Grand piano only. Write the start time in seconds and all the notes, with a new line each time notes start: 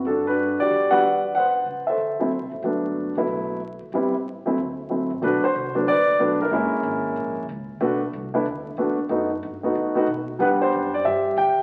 0.07 D4 F#4 A4
0.27 D4 F#4 B4
0.60 F#4 G4 D5
0.91 G3 B3 D4 F#4 B4 D5 F#5
1.35 B4 C5 F#5
1.87 A4 C5 E5
2.19 F#3 A3 C4 E4
2.63 F#3 A3 B3 D4
3.17 F#3 A3 B3 E4
3.94 G3 B3 C4 E4
4.45 F#3 A3 C4 E4
4.89 F#3 A3 C4 E4
5.21 F#3 A3 B3 D4 B4
5.26 F#4
5.44 C5
5.75 F#3 A3 B3 D4
5.88 B4 D5
6.19 F#3 A3 B3 D4
6.41 E4 A#4
6.51 G#3 A#3 C#4 E4
7.81 A3 B3 D4 F#4
8.34 A3 B3 D4 E4
8.78 A3 B3 D4 F#4
9.09 A3 B3 D#4 F#4
9.63 A3 B3 D#4 F#4
9.95 A3 B3 D#4 F#4
10.39 G3 B3 D4 B4 F#5
10.44 G4
10.62 C5
10.94 D5
11.05 G4 E5
11.38 G5